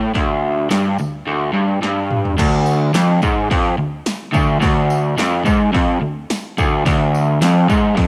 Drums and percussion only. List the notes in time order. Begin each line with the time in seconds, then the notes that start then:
0.14 kick, open hi-hat, tambourine
0.70 snare, open hi-hat, tambourine
0.98 tambourine
1.83 snare
2.11 mid tom
2.25 floor tom
2.38 kick, open hi-hat, crash, tambourine
2.66 tambourine
2.94 snare, open hi-hat, tambourine
3.22 kick, tambourine
3.51 kick, open hi-hat
4.06 snare, open hi-hat, tambourine
4.34 kick, tambourine
4.62 kick, open hi-hat, tambourine
4.90 tambourine
5.18 snare, open hi-hat, tambourine
5.46 kick, tambourine
5.75 kick, open hi-hat
6.30 snare, open hi-hat, tambourine
6.58 kick, tambourine
6.86 kick, open hi-hat, tambourine
7.14 tambourine
7.41 snare, open hi-hat, tambourine
7.70 kick, tambourine
7.97 kick, open hi-hat